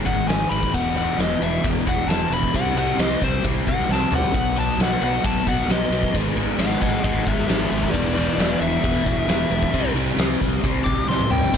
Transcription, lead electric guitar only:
0.06 F#5
0.28 G#5
0.49 B5
0.74 F#5
0.97 F#5
1.21 D#5
1.43 E5
1.89 F#5
2.09 A5
2.33 B5
2.56 F#5
2.78 F#5
3.00 D#5
3.24 C5
3.68 F#5
3.92 A5
4.15 F#5
4.37 F#5
4.59 A5
4.82 F#5
5.04 F#5
5.26 A5
5.48 F#5
5.71 D#5
6.59 D#5 F#5
6.82 D#5 F#5
7.03 D#5 F#5
7.27 G#4 E5
7.48 G#4 E5
7.70 G#4 E5
7.91 B4 D5
8.13 B4 D5
8.36 B4 D5
8.61 E5
10.84 D6
11.09 C6
11.31 G5

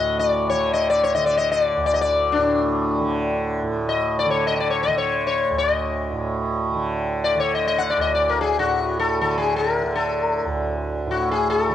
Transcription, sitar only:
Already playing: D#5
0.19 D5
0.50 C#5
0.73 D#5
0.90 D5
1.03 C#5
1.15 D#5
1.26 D5
1.37 D#5
1.52 D#5
1.63 D5
1.86 D5
1.94 D#5
2.01 D5
2.32 D4
3.89 D#5
4.19 D5
4.30 C#5
4.47 D#5
4.56 D#5
4.60 D5
4.70 C#5
4.83 D#5
4.98 C#5
5.27 C#5
5.58 D#5
7.24 D5
7.40 C#5
7.55 D#5
7.67 D#5
7.78 F#5
7.90 D5
8.01 D#5
8.15 D5
8.29 A#4
8.41 G#4
8.59 F#4
8.99 A4
9.21 A4
9.38 G#4
9.56 A#4
9.96 A4
11.11 F#4
11.31 G#4
11.50 A4

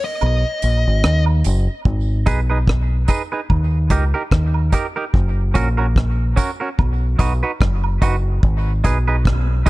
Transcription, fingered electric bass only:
0.23 B1
0.64 A#1
0.87 G#1
1.05 D#2
1.46 F#1
1.86 G#1
2.28 B1
3.51 D#2
3.91 C#2
4.32 D#2
5.15 F#1
5.56 A#1
6.80 B1
7.20 B1
7.61 F#1
8.02 F#1
8.44 G#1
8.85 B1

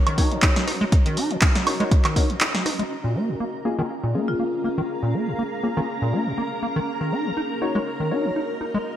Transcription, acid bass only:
0.07 D#3
0.18 D#4
0.31 D#3
0.43 D#4
0.67 D#4
0.81 G#3
1.06 D#3
1.17 D#4
1.31 D#3
1.42 D#4
1.67 D#4
1.80 G#3
2.05 D#3
2.16 D#4
2.30 D#3
2.41 D#4
2.66 D#4
2.79 G#3
3.04 A#2
3.15 A#3
3.29 A#2
3.40 A#3
3.65 A#3
3.79 D#3
4.03 A#2
4.15 A#3
4.28 A#2
4.40 A#3
4.64 A#3
4.78 D#3
5.03 A#2
5.14 A#3
5.28 A#2
5.39 A#3
5.63 A#3
5.77 D#3
6.02 A#2
6.13 A#3
6.27 A#2
6.38 A#3
6.63 A#3
6.76 D#3
7.01 D#3
7.12 D#4
7.26 D#3
7.37 D#4
7.62 D#4
7.75 G#3
8.00 D#3
8.11 D#4
8.25 D#3
8.36 D#4
8.61 D#4
8.74 G#3

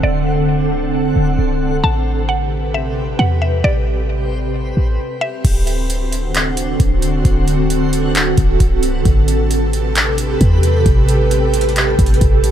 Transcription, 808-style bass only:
0.03 D1
1.16 D1
1.39 C1
1.84 A1
3.19 E2
3.64 A1
4.77 A1
5.45 D1
6.80 D1
7.25 D1
8.38 D1
8.60 C1
9.06 A1
10.41 E2
10.86 A1
11.99 A1
12.21 A1

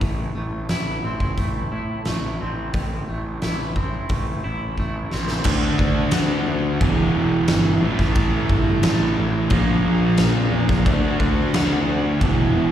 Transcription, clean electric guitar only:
Already playing: A3 E4
0.02 A2
0.35 A3
0.70 E4
1.04 C4
1.38 A3
1.72 E4
2.07 A3
2.41 C4
2.75 A2
3.08 A3
3.43 E4
3.76 C4
4.11 A3
4.44 E4
4.79 A3
5.13 C4

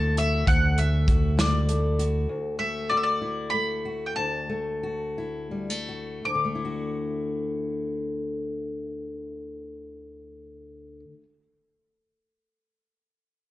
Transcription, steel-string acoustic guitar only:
Already playing: D2 A3 E4 F#4
0.18 F#4
0.47 D2
0.78 A3
1.08 F#4
1.37 E4
1.69 A3
1.99 F#4
2.29 D2
2.59 A3
2.91 F#4
3.21 E4
3.54 A3
3.85 F#4
4.17 D2
4.49 A3
4.83 F#4
5.18 E4
5.51 G3
5.70 A3
5.88 F#4
6.25 D2
6.35 D3
6.45 A3
6.55 E4
6.65 F#4

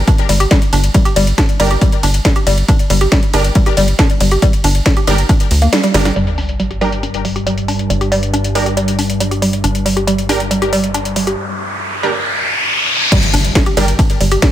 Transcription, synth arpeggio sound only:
0.08 D4
0.29 G3
0.40 G4
0.51 G3
0.73 D4
0.94 G3
1.05 G4
1.16 G3
1.38 D4
1.60 G3
1.71 G4
1.82 G3
2.03 D4
2.25 G3
2.36 G4
2.47 G3
2.69 D4
2.90 G3
3.01 G4
3.12 G3
3.34 D4
3.55 G3
3.66 G4
3.77 G3
3.99 D4
4.21 G3
4.32 G4
4.42 G3
4.64 D4
4.86 G3
4.97 G4
5.08 G3
5.29 D4
5.62 A#3
5.73 G3
5.84 G3
5.94 G3
6.05 G3
6.16 G3
6.38 D4
6.60 G3
6.71 G4
6.81 G3
7.03 D4
7.25 G3
7.36 G4
7.46 G3
7.68 D4
7.90 G3
8.01 G4
8.12 G3
8.33 D4
8.55 G3
8.66 G4
8.77 G3
8.99 D4
9.20 G3
9.31 G4
9.42 G3
9.64 D4
9.86 G3
9.97 G4
10.07 G3
10.29 D4
10.51 G3
10.62 G4
10.73 G3
10.94 D4
11.16 G3
11.27 G4
13.12 G3
13.34 D4
13.55 G3
13.66 G4
13.77 G3
13.99 D4
14.21 G3
14.32 G4
14.42 G3

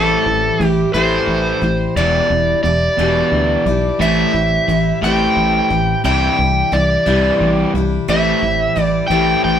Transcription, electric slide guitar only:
Already playing: A4
0.66 G4
0.94 C5
1.97 D5
2.63 D5
4.01 E5
5.04 G5
6.05 G5
6.73 D5
8.10 E5
8.83 D5
9.08 G5
9.44 G5

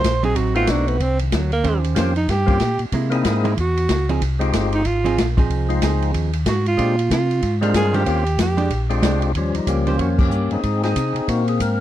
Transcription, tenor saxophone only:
Already playing: C5
0.25 G#4
0.36 F#4
0.56 F4
0.70 D4
0.88 B3
1.02 C4
1.21 D#3
1.33 F#3
1.53 A#3
2.17 D#4
2.30 G4
3.47 D#4
3.60 F#4
4.75 D#4
4.86 F4
6.48 F#4
6.68 F4
7.12 F4
7.76 G#4
7.96 G4
8.41 G4

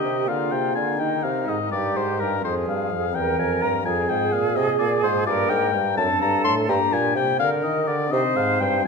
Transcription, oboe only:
Already playing: D#5
0.28 F5
0.52 G5
0.75 G#5
0.99 G5
1.23 F5
1.48 D#5
1.72 D5
1.96 C5
2.20 A#4
2.44 C5
2.69 F5
3.15 G5
3.39 G#5
3.62 A#5
3.85 G#5
4.09 G5
4.32 F5
4.56 D#5
4.78 D5
5.03 C5
5.26 D5
5.49 G5
5.97 A5
6.22 A#5
6.44 C6
6.69 A#5
6.93 G#5
7.16 G5
7.39 F5
7.64 D#5
7.88 D5
8.12 D#5
8.36 F5
8.60 G5

